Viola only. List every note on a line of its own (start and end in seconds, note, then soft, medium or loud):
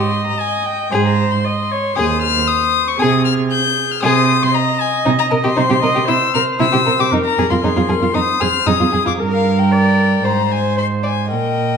0.00 0.93 D#5 medium
0.93 1.46 C5 medium
1.45 1.73 D#5 medium
1.71 1.96 C#5 medium
1.97 2.98 C5 medium
3.00 4.01 G#4 medium
4.03 4.54 C5 medium
4.55 5.59 D#5 medium
5.58 5.82 C5 medium
5.82 6.08 D#5 medium
6.08 7.14 C5 medium
7.13 7.64 A#4 medium
7.64 7.92 G#4 medium
7.90 8.15 A#4 medium
8.15 8.69 C5 medium
8.68 9.21 G#4 medium
9.20 9.74 A#4 medium
9.72 10.26 D5 medium
10.25 11.32 C5 soft
11.32 11.77 A#4 soft